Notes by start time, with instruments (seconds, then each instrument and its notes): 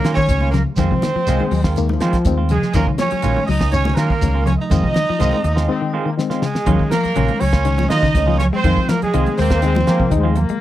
Already playing: tenor saxophone A#3, horn section A#4
0.04 fingered electric bass D#3, clean electric guitar F#3 A#3 C#4 F4, snare, closed hi-hat, shekere
0.14 clean electric guitar D#3, tenor saxophone C#4, horn section C#5, kick
0.27 fingered electric bass C#2, reed electric piano D#3 G#3 C#4, kick, closed hi-hat, high conga, shekere
0.41 clean electric guitar A#3 C#4 F4, high conga
0.51 clean electric guitar C#3, tenor saxophone A#3, horn section A#4, snare, closed hi-hat, low conga, shekere
0.67 muted fingered electric bass stroke
0.76 fingered electric bass F2, clean electric guitar D#3 G#3 C4 F4, reed electric piano D#3 G#3 C4, tenor saxophone C4, horn section C5, kick, snare, closed hi-hat, high conga, low conga, shekere
0.91 clean electric guitar C3, fingered electric bass F3, kick
1.02 clean electric guitar D#3, snare, closed hi-hat, high conga, shekere
1.15 clean electric guitar F3, muted fingered electric bass stroke
1.27 fingered electric bass C2, reed electric piano D#3 G#3 C4, clean electric guitar D#3 G#3 C4 F4, trombone section G#3, snare, closed hi-hat, high conga, shekere
1.40 clean electric guitar D#3, high conga
1.51 fingered electric bass D#2, clean electric guitar F#3, open hi-hat, shekere
1.62 trombone section D#3, clean electric guitar G#3 C4 F4, kick, snare
1.76 reed electric piano D#3 G#3 A#3, closed hi-hat, high conga, shekere
1.89 clean electric guitar D#3, trombone section F3, high conga
2.00 clean electric guitar D#3 G#3 C4 F4, fingered electric bass F3, snare, closed hi-hat, shekere
2.13 kick, snare, closed hi-hat
2.25 fingered electric bass D#2, reed electric piano D#3 G#3 C4, kick, closed hi-hat, high conga, shekere
2.38 clean electric guitar C4 F4, muted clean electric guitar stroke
2.49 clean electric guitar C#3, tenor saxophone G#3, horn section G#4, closed hi-hat, high conga, low conga, shekere
2.62 muted fingered electric bass stroke, snare
2.73 fingered electric bass D#2, reed electric piano D#3 G#3 C#4, clean electric guitar D#3 F#3 A#3 C#4 F4, tenor saxophone A#3, horn section A#4, kick, closed hi-hat, high conga, low conga, shekere
2.86 clean electric guitar C#3, fingered electric bass D#3, kick
2.98 clean electric guitar F3, tenor saxophone C#4, horn section C#5, snare, closed hi-hat, high conga, shekere
3.11 clean electric guitar F#3, muted fingered electric bass stroke, closed hi-hat
3.22 fingered electric bass A#1, reed electric piano D#3 G#3 C#4, clean electric guitar F#3 A#3 C#4 F4, closed hi-hat, high conga, shekere
3.37 clean electric guitar D#3, high conga
3.47 fingered electric bass C#2, clean electric guitar F#3, tenor saxophone D#4, horn section D#5, open hi-hat, shekere
3.60 clean electric guitar A#3 C#4, muted clean electric guitar stroke, kick, snare
3.72 reed electric piano D#3 G#3 C#4, horn section C#5, closed hi-hat, high conga, shekere
3.76 tenor saxophone C#4
3.85 clean electric guitar D#3, high conga
3.95 fingered electric bass D#3, clean electric guitar F#3 A#3 C#4 F4, tenor saxophone A#3, horn section A#4, snare, closed hi-hat, shekere
4.10 clean electric guitar D#3, kick
4.21 fingered electric bass C#2, reed electric piano D#3 G#3 C#4, kick, closed hi-hat, high conga, shekere
4.34 clean electric guitar A#3 C#4 F4
4.45 clean electric guitar C#3, tenor saxophone C#4, horn section C#5, closed hi-hat, high conga, low conga, shekere
4.58 tenor saxophone D#4, horn section D#5, muted fingered electric bass stroke
4.70 fingered electric bass F2, clean electric guitar D#3 G#3 C4 F4, reed electric piano D#3 G#3 C4, kick, closed hi-hat, high conga, low conga, shekere
4.84 clean electric guitar C3, fingered electric bass F3, kick
4.94 clean electric guitar D#3, snare, closed hi-hat, high conga, shekere
5.09 clean electric guitar F3, muted fingered electric bass stroke
5.19 fingered electric bass C2, reed electric piano D#3 G#3 C4, clean electric guitar D#3 G#3 C4 F4, trombone section G#3, closed hi-hat, high conga, shekere
5.32 clean electric guitar D#3, high conga
5.44 fingered electric bass D#2, trombone section A#3, muted clean electric guitar stroke, closed hi-hat, shekere
5.56 clean electric guitar G#3 C4 F4, trombone section G#3, snare
5.68 reed electric piano D#3 G#3 C4, trombone section C4
5.81 clean electric guitar D#3
5.93 clean electric guitar D#3 G#3 C4 F4, trombone section G#3
6.06 clean electric guitar D#3, trombone section A#3
6.17 reed electric piano D#3 G#3 C4, trombone section G#3, snare
6.30 clean electric guitar G#3 C4 F4, snare
6.42 clean electric guitar C#3, horn section G#4, snare
6.46 tenor saxophone G#3
6.55 snare
6.66 fingered electric bass D#2, clean electric guitar D#3 F#3 A#3 C#4 F4, reed electric piano D#3 G#3 C#4, kick, closed hi-hat, high conga, low conga
6.79 fingered electric bass D#3, kick
6.91 clean electric guitar F3, tenor saxophone A#3, horn section A#4, snare, closed hi-hat, high conga
7.04 muted fingered electric bass stroke, closed hi-hat, low conga
7.15 fingered electric bass A#1, clean electric guitar C#3 F#3 A#3 C#4 F4, reed electric piano D#3 G#3 C#4, closed hi-hat, high conga
7.28 closed hi-hat, high conga
7.40 fingered electric bass C#2, clean electric guitar F#3, tenor saxophone C#4, horn section C#5, open hi-hat
7.53 clean electric guitar A#3 C#4 F4, kick, snare, closed hi-hat
7.65 reed electric piano D#3 G#3 C#4, clean electric guitar D#3, closed hi-hat, high conga
7.78 clean electric guitar F3, closed hi-hat, high conga
7.89 fingered electric bass D#3, clean electric guitar F#3 A#3 F4, tenor saxophone D#4, horn section D#5, snare, closed hi-hat
8.03 clean electric guitar C#3, kick, snare
8.15 fingered electric bass C#2, reed electric piano D#3 G#3 C#4, kick, snare, closed hi-hat, high conga
8.26 clean electric guitar F3 A#3 C#4 F4
8.39 tenor saxophone C#4, horn section C#5, snare, closed hi-hat, low conga
8.53 clean electric guitar G#3, tenor saxophone C4, horn section C5, muted fingered electric bass stroke
8.64 fingered electric bass F2, clean electric guitar D#3 G#3 C4 F4, reed electric piano D#3 G#3 C4, kick, closed hi-hat, high conga, low conga
8.77 fingered electric bass F3, kick
8.89 clean electric guitar F3, tenor saxophone A#3, horn section A#4, snare, closed hi-hat, high conga
9.02 tenor saxophone G#3, horn section G#4, muted fingered electric bass stroke, closed hi-hat, low conga
9.13 fingered electric bass C2, reed electric piano D#3 G#3 C4, clean electric guitar D#3 G#3 C4 F4, trombone section G#3, muted clean electric guitar stroke, closed hi-hat, high conga
9.26 closed hi-hat, high conga
9.37 fingered electric bass D#2, clean electric guitar G#3, trombone section A#3, tenor saxophone C4, horn section C5, snare, open hi-hat
9.50 clean electric guitar G#3 C4 F4, trombone section A#3, kick, snare, closed hi-hat
9.62 reed electric piano D#3 G#3 C4, trombone section G#3, muted clean electric guitar stroke, snare, closed hi-hat, high conga
9.75 clean electric guitar F3, closed hi-hat, high conga
9.86 clean electric guitar D#3 G#3 C4 F4, fingered electric bass F3, trombone section A#3, snare, closed hi-hat
10.00 clean electric guitar C3, kick
10.10 fingered electric bass D#2, reed electric piano D#3 G#3 D#4, trombone section G#3, kick, closed hi-hat, high conga
10.23 clean electric guitar F3 G#3 C4 F4
10.36 trombone section A#3, closed hi-hat, high conga, low conga
10.49 clean electric guitar G#3, muted fingered electric bass stroke, closed hi-hat